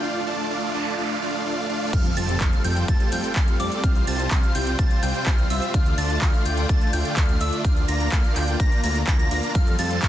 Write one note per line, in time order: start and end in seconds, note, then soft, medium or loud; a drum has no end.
0.03 0.24 A3 medium
0.03 0.24 D4 medium
0.03 0.24 F4 medium
0.03 0.24 D5 medium
0.03 0.24 F5 medium
0.03 noise sweep medium
0.27 0.47 A3 medium
0.27 0.47 D4 medium
0.27 0.48 F4 medium
0.27 0.48 D5 medium
0.27 0.47 A5 medium
0.50 0.71 A3 medium
0.50 0.71 D4 medium
0.50 0.71 F4 medium
0.50 0.71 D5 medium
0.50 0.71 F5 medium
0.74 0.95 A3 medium
0.74 0.95 D4 medium
0.74 0.95 F4 medium
0.74 0.95 D5 medium
0.74 0.95 A5 loud
0.98 1.19 A3 medium
0.98 1.19 D4 medium
0.98 1.19 F4 medium
0.98 1.19 D5 medium
0.98 1.19 F5 medium
1.22 1.43 A3 medium
1.22 1.43 D4 medium
1.22 1.43 F4 medium
1.22 1.43 D5 medium
1.22 1.43 F5 medium
1.46 1.67 A3 medium
1.46 1.67 D4 medium
1.46 1.67 F4 medium
1.46 1.67 D5 medium
1.46 1.67 F5 medium
1.69 1.90 A3 medium
1.69 1.90 D4 medium
1.69 1.90 F4 medium
1.69 1.90 D5 medium
1.69 1.90 F5 medium
1.93 2.13 F2 loud
1.93 5.70 G3 medium
1.93 2.14 G3 medium
1.93 3.82 A3 medium
1.93 2.14 C4 medium
1.93 9.51 F4 medium
1.93 2.14 F4 medium
1.93 2.14 A4 medium
1.93 2.14 F5 medium
1.93 2.14 F6 medium
1.93 kick loud
1.93 closed hi-hat medium
1.93 crash loud
1.93 impact medium
1.93 shaker soft
2.05 closed hi-hat soft
2.05 shaker soft
2.17 2.37 F2 loud
2.17 2.38 G3 medium
2.17 2.38 C4 medium
2.17 2.38 F4 medium
2.17 2.38 A4 medium
2.17 2.38 A5 loud
2.17 2.38 A6 loud
2.17 open hi-hat loud
2.17 shaker medium
2.29 closed hi-hat medium
2.29 shaker soft
2.40 2.51 F2 loud
2.40 2.62 G3 medium
2.40 2.62 C4 medium
2.40 2.62 F4 medium
2.40 2.62 A4 medium
2.40 2.62 F5 loud
2.40 2.62 F6 medium
2.40 kick loud
2.40 clap loud
2.40 closed hi-hat medium
2.40 shaker soft
2.53 shaker soft
2.64 2.85 F2 medium
2.64 2.86 G3 medium
2.64 2.86 C4 medium
2.64 2.86 F4 medium
2.64 2.86 A4 medium
2.64 2.86 G5 medium
2.64 2.86 G6 medium
2.64 open hi-hat medium
2.64 shaker medium
2.76 closed hi-hat medium
2.76 shaker soft
2.88 2.98 F2 medium
2.88 3.09 G3 medium
2.88 3.09 C4 medium
2.88 3.09 F4 medium
2.88 3.09 A4 medium
2.88 3.09 A5 loud
2.88 3.09 A6 medium
2.88 kick loud
2.88 closed hi-hat medium
2.88 shaker soft
3.00 closed hi-hat soft
3.00 shaker soft
3.12 3.22 F2 medium
3.12 3.33 G3 medium
3.12 3.33 C4 medium
3.12 3.33 F4 medium
3.12 3.33 A4 medium
3.12 3.33 G5 medium
3.12 3.33 G6 medium
3.12 open hi-hat loud
3.12 shaker medium
3.24 closed hi-hat medium
3.24 shaker soft
3.36 3.56 F2 loud
3.36 3.56 G3 medium
3.36 3.56 C4 medium
3.36 3.56 F4 medium
3.36 3.56 A4 medium
3.36 3.56 F5 loud
3.36 3.56 F6 loud
3.36 kick loud
3.36 clap loud
3.36 closed hi-hat medium
3.36 shaker soft
3.48 closed hi-hat soft
3.48 shaker soft
3.60 3.70 F2 medium
3.60 3.81 G3 medium
3.60 3.81 C4 medium
3.60 3.81 F4 medium
3.60 3.81 A4 medium
3.60 3.81 D5 medium
3.60 3.81 D6 medium
3.60 open hi-hat medium
3.60 shaker medium
3.72 closed hi-hat medium
3.72 shaker soft
3.84 4.04 C2 loud
3.84 5.72 C3 medium
3.84 4.05 G3 medium
3.84 4.05 C4 medium
3.84 4.05 F4 medium
3.84 4.05 C5 medium
3.84 4.05 F5 medium
3.84 4.05 F6 medium
3.84 kick loud
3.84 closed hi-hat medium
3.84 shaker soft
3.96 closed hi-hat soft
3.96 shaker soft
4.07 4.28 C2 loud
4.07 4.28 G3 medium
4.07 4.28 C4 medium
4.07 4.28 F4 medium
4.07 4.28 C5 medium
4.07 4.28 A5 medium
4.07 4.28 A6 medium
4.07 open hi-hat loud
4.07 shaker medium
4.19 closed hi-hat medium
4.19 shaker soft
4.31 4.41 C2 loud
4.31 4.52 G3 medium
4.31 4.52 C4 medium
4.31 4.52 F4 medium
4.31 4.52 C5 medium
4.31 4.52 F5 loud
4.31 4.52 F6 medium
4.31 kick loud
4.31 clap loud
4.31 closed hi-hat medium
4.31 shaker soft
4.43 shaker soft
4.55 4.75 C2 medium
4.55 4.76 G3 medium
4.55 4.76 C4 medium
4.55 4.76 F4 medium
4.55 4.76 C5 medium
4.55 4.76 G5 medium
4.55 4.76 G6 medium
4.55 open hi-hat medium
4.55 shaker medium
4.67 closed hi-hat medium
4.67 shaker soft
4.79 4.89 C2 medium
4.79 5.00 G3 medium
4.79 5.00 C4 medium
4.79 5.00 F4 medium
4.79 5.00 C5 medium
4.79 5.00 A5 medium
4.79 5.00 A6 loud
4.79 kick loud
4.79 closed hi-hat medium
4.79 shaker soft
4.91 closed hi-hat soft
4.91 shaker soft
5.03 5.13 C2 medium
5.03 5.24 G3 medium
5.03 5.24 C4 medium
5.03 5.24 F4 medium
5.03 5.24 C5 medium
5.03 5.24 G5 medium
5.03 5.24 G6 medium
5.03 open hi-hat loud
5.03 shaker medium
5.15 closed hi-hat medium
5.15 shaker soft
5.26 5.47 C2 loud
5.26 5.47 G3 medium
5.26 5.47 C4 medium
5.26 5.47 F4 medium
5.26 5.47 C5 medium
5.26 5.47 F5 loud
5.26 5.47 F6 loud
5.26 kick loud
5.26 clap loud
5.26 closed hi-hat medium
5.26 shaker soft
5.38 closed hi-hat soft
5.38 shaker soft
5.50 5.60 C2 medium
5.50 5.71 G3 medium
5.50 5.71 C4 medium
5.50 5.71 F4 medium
5.50 5.71 C5 medium
5.50 5.71 E5 medium
5.50 5.71 E6 medium
5.50 open hi-hat loud
5.50 shaker medium
5.62 closed hi-hat medium
5.62 shaker soft
5.74 5.94 D2 loud
5.74 9.51 D3 medium
5.74 7.63 A3 medium
5.74 5.95 A3 medium
5.74 5.95 D4 medium
5.74 5.95 F4 medium
5.74 5.95 D5 medium
5.74 5.95 F5 medium
5.74 5.95 F6 medium
5.74 kick loud
5.74 closed hi-hat medium
5.74 shaker soft
5.86 closed hi-hat soft
5.86 shaker soft
5.98 6.18 D2 loud
5.98 6.19 A3 medium
5.98 6.19 D4 medium
5.98 6.19 F4 medium
5.98 6.19 D5 medium
5.98 6.19 A5 loud
5.98 6.19 A6 loud
5.98 open hi-hat loud
5.98 shaker medium
6.10 closed hi-hat medium
6.10 shaker soft
6.21 6.32 D2 loud
6.21 6.43 A3 medium
6.21 6.43 D4 medium
6.21 6.43 F4 medium
6.21 6.43 D5 medium
6.21 6.43 F5 loud
6.21 6.43 F6 medium
6.21 kick loud
6.21 clap loud
6.21 closed hi-hat medium
6.21 shaker soft
6.34 shaker soft
6.46 6.66 D2 medium
6.46 6.67 A3 medium
6.46 6.67 D4 medium
6.46 6.67 F4 medium
6.46 6.67 D5 medium
6.46 6.67 G5 medium
6.46 6.67 G6 medium
6.46 open hi-hat loud
6.46 shaker medium
6.57 closed hi-hat medium
6.57 shaker soft
6.69 6.79 D2 medium
6.69 6.90 A3 medium
6.69 6.90 D4 medium
6.69 6.90 F4 medium
6.69 6.90 D5 medium
6.69 6.90 A5 loud
6.69 6.90 A6 loud
6.69 kick loud
6.69 closed hi-hat medium
6.69 shaker soft
6.81 closed hi-hat soft
6.81 shaker soft
6.93 7.03 D2 medium
6.93 7.14 A3 medium
6.93 7.14 D4 medium
6.93 7.14 F4 medium
6.93 7.14 D5 medium
6.93 7.14 G5 medium
6.93 7.14 G6 medium
6.93 open hi-hat loud
6.93 shaker medium
7.05 closed hi-hat medium
7.05 shaker soft
7.17 7.37 D2 loud
7.17 7.37 A3 medium
7.17 7.37 D4 medium
7.17 7.37 F4 medium
7.17 7.37 D5 medium
7.17 7.37 F5 loud
7.17 7.37 F6 loud
7.17 kick loud
7.17 clap loud
7.17 closed hi-hat medium
7.17 shaker soft
7.29 closed hi-hat soft
7.29 shaker soft
7.41 7.51 D2 medium
7.41 7.62 A3 medium
7.41 7.62 D4 medium
7.41 7.62 F4 medium
7.41 7.62 D5 medium
7.41 7.62 E5 medium
7.41 7.62 E6 medium
7.41 open hi-hat medium
7.41 shaker medium
7.53 closed hi-hat medium
7.53 shaker soft
7.65 7.85 D2 loud
7.65 9.53 A#3 medium
7.65 7.86 A#3 medium
7.65 7.86 D4 medium
7.65 7.86 F4 medium
7.65 7.86 D5 medium
7.65 7.86 F5 medium
7.65 7.86 F6 medium
7.65 kick loud
7.65 closed hi-hat medium
7.65 shaker soft
7.76 closed hi-hat soft
7.76 shaker soft
7.88 8.08 D2 loud
7.88 8.09 A#3 medium
7.88 8.09 D4 medium
7.88 8.09 F4 medium
7.88 8.09 D5 medium
7.88 8.09 A#5 loud
7.88 8.09 A#6 loud
7.88 open hi-hat loud
7.88 shaker medium
8.00 closed hi-hat medium
8.00 shaker soft
8.12 8.22 D2 loud
8.12 8.33 A#3 medium
8.12 8.33 D4 medium
8.12 8.33 F4 medium
8.12 8.33 D5 medium
8.12 8.33 F5 loud
8.12 8.33 F6 medium
8.12 kick loud
8.12 clap loud
8.12 closed hi-hat medium
8.12 shaker soft
8.24 shaker soft
8.36 8.56 D2 medium
8.36 8.57 A#3 medium
8.36 8.57 D4 medium
8.36 8.57 F4 medium
8.36 8.57 D5 medium
8.36 8.57 G5 medium
8.36 8.57 G6 medium
8.36 clap soft
8.36 open hi-hat loud
8.36 shaker medium
8.48 closed hi-hat soft
8.48 shaker soft
8.60 8.70 D2 medium
8.60 8.81 A#3 medium
8.60 8.81 D4 medium
8.60 8.81 F4 medium
8.60 8.81 D5 medium
8.60 8.81 A#5 loud
8.60 8.81 A#6 loud
8.60 kick loud
8.60 closed hi-hat medium
8.60 shaker soft
8.72 closed hi-hat soft
8.72 shaker soft
8.84 9.04 D2 loud
8.84 9.00 A#3 loud
8.84 9.00 D4 medium
8.84 9.00 F4 medium
8.84 9.00 D5 medium
8.84 9.00 A#5 loud
8.84 9.00 A#6 loud
8.84 open hi-hat loud
8.84 shaker medium
8.96 closed hi-hat medium
8.96 shaker soft
9.07 9.27 D2 loud
9.07 9.17 A#3 medium
9.07 9.17 D4 medium
9.07 9.17 F4 medium
9.07 9.17 D5 medium
9.07 9.17 A#5 loud
9.07 9.17 A#6 loud
9.07 kick loud
9.07 clap loud
9.07 closed hi-hat medium
9.07 shaker soft
9.19 9.28 A#3 medium
9.19 9.28 D4 medium
9.19 9.28 F4 medium
9.19 9.28 D5 medium
9.19 9.28 A#5 medium
9.19 9.28 A#6 medium
9.19 closed hi-hat soft
9.19 shaker soft
9.31 9.41 D2 medium
9.31 9.52 A#3 medium
9.31 9.52 D4 medium
9.31 9.52 F4 medium
9.31 9.52 D5 medium
9.31 9.52 A#5 loud
9.31 9.52 A#6 loud
9.31 open hi-hat loud
9.31 shaker medium
9.43 closed hi-hat medium
9.43 shaker soft
9.55 9.75 F2 loud
9.55 10.08 G3 medium
9.55 9.76 G3 medium
9.55 10.08 A3 medium
9.55 9.76 C4 medium
9.55 9.76 F4 medium
9.55 10.08 F4 loud
9.55 9.76 A4 medium
9.55 9.76 F5 medium
9.55 9.76 F6 medium
9.55 kick loud
9.55 closed hi-hat medium
9.55 shaker soft
9.67 closed hi-hat soft
9.67 shaker soft
9.79 9.99 F2 loud
9.79 10.00 G3 medium
9.79 10.00 C4 medium
9.79 10.00 F4 medium
9.79 10.00 A4 medium
9.79 10.00 A5 loud
9.79 10.00 A6 loud
9.79 open hi-hat loud
9.79 shaker medium
9.91 closed hi-hat medium
9.91 shaker soft
10.02 10.08 F2 loud
10.02 10.08 G3 medium
10.02 10.08 C4 medium
10.02 10.08 F4 medium
10.02 10.08 A4 medium
10.02 10.08 F5 loud
10.02 10.08 F6 medium
10.02 kick loud
10.02 clap loud
10.02 closed hi-hat medium
10.02 shaker soft